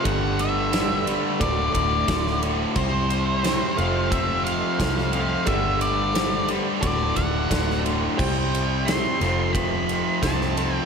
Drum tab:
CC |----------------|x---------------|----------------|x---------------|
RD |x-x-x-x-x-x-x-x-|--x-x-x-x-x-x-x-|x-x-x-x-x-x-x-x-|--x-x-x-x-x-x-x-|
SD |----o-------oo--|----o-------oo--|----o-------oo--|----o-o-----oo--|
BD |o-------o-o-o---|o-------o---o---|o-------o-o-o---|o-------o---o---|